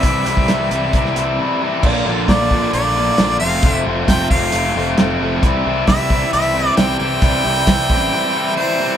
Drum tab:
CC |----------------|x---------------|----------------|----------------|
HH |x-x-x-x-x-x-----|----x---x---x---|x---x---x---x---|x---x---x---x---|
SD |---oo----o------|----o-------o---|----o-------o---|----o-------o---|
BD |o--o----o-------|o---o-o---------|o---o-o---------|o---o-o---------|

CC |----------------|
HH |x---x-----------|
SD |----o-----------|
BD |o---o-o---------|